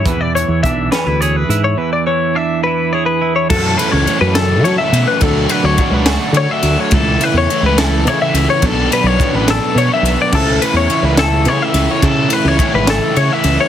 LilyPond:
<<
  \new Staff \with { instrumentName = "Clean electric guitar" } { \time 6/8 \key a \major \tempo 4. = 70 b'16 d''16 cis''8 e''8 b'8 cis''16 b'8 cis''16 | b'16 d''16 cis''8 e''8 b'8 cis''16 b'8 cis''16 | a'8 b'16 cis''8 b'16 a'8 cis''16 e''8 b'16 | a'8 b'16 cis''8 b'16 a'8 cis''16 e''8 cis''16 |
a'8 b'16 cis''8 b'16 a'8 cis''16 e''8 cis''16 | a'8 b'16 cis''8 b'16 a'8 cis''16 e''8 d''16 | a'8 b'16 cis''8 b'16 a'8 cis''16 e''8 cis''16 | a'8 b'16 cis''8 b'16 a'8 cis''16 e''8 cis''16 | }
  \new Staff \with { instrumentName = "Clean electric guitar" } { \time 6/8 \key a \major << { r4 d'8 cis'16 e'16 gis'8 e'8 | r4 d'8 e'8 gis'8 e'8 | r2. | r2. |
r2. | r2. | r2. | r2. | } \\ { <e, e>8 e2~ e8 | e,8 e2~ e8~ | e2. | r2. |
r2. | r2. | r2. | r2. | } >> }
  \new Staff \with { instrumentName = "Overdriven electric guitar" } { \time 6/8 \key a \major r2. | r2. | <fis, cis fis a cis' a'>8 <fis a cis' a'>8 <fis a cis' a'>8 <fis, cis fis a cis' a'>8 <fis a cis' a'>4 | <d fis a d' fis'>8 <a d' fis'>8 <fis a d' fis'>8 <d fis a d' fis'>8 <fis a d' fis'>4 |
<cis e a e'>8 <e a e'>8 <cis e a e'>8 <cis e a e'>8 <cis e a e'>4 | <b, fis b d'>8 <fis b d'>8 <b, fis b d'>8 <b, fis b d'>8 <b, fis b d'>4 | <cis e a e'>8 <e a e'>8 <cis e a e'>8 <cis e a e'>8 <cis e a e'>4 | <cis e a e'>8 <e a e'>8 <cis e a e'>8 <cis e a e'>8 <cis e a e'>4 | }
  \new Staff \with { instrumentName = "Fingered electric bass" } { \clef bass \time 6/8 \key a \major e,8. e,16 b,,8 r16 d,8. gis,8 | r2. | fis,8 r16 cis,16 r16 fis,8. fis16 r16 b,16 r16 | d,8 r16 d,16 r16 cis,8 r16 d16 r16 d,16 r16 |
cis,8 r16 e,16 r16 cis,8. cis16 r16 cis,16 r16 | b,,8 r16 b,,16 r16 a,,8 r16 b,16 r16 b,,16 r16 | cis,8 r16 e,16 r16 cis,8. cis16 r16 cis,16 r16 | cis8 r16 cis,16 r16 gis,,8 r16 cis16 r16 cis,16 r16 | }
  \new DrumStaff \with { instrumentName = "Drums" } \drummode { \time 6/8 <hh bd>8 hh8 <hh bd>8 <hh sn>8 hh8 hh8 | r4. r4. | <cymc bd>8 cymr8 cymr8 <cymr sn>8 cymr8 cymr8 | <bd cymr>8 cymr8 <bd cymr>8 <cymr sn>8 cymr8 cymr8 |
<bd cymr>8 cymr8 cymr8 <cymr sn>8 cymr8 cymr8 | <bd cymr>8 cymr8 <bd cymr>8 <cymr sn>8 cymr8 cymr8 | <cymc bd>8 cymr8 cymr8 <cymr sn>8 cymr8 cymr8 | <bd cymr>8 cymr8 <bd cymr>8 <cymr sn>8 cymr8 cymr8 | }
>>